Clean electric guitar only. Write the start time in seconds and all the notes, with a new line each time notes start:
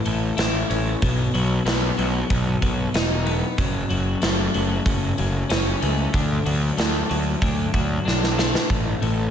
Already playing: E3 C#4
0.05 A3
0.37 E4
0.70 C#4
1.02 B2
1.34 F#3
1.66 B3
1.98 F#3
2.30 B2
2.62 F#3
2.94 D#4
3.26 B3
3.59 F#2
3.90 F#3
4.22 A3
4.54 F#3
4.86 C#3
5.18 F#3
5.50 C#4
5.81 A3
6.13 D3
6.46 F#3
6.77 A3
7.09 F#3
7.42 D3
7.74 F#3
8.05 D4
8.38 A3
8.70 A2
9.02 A3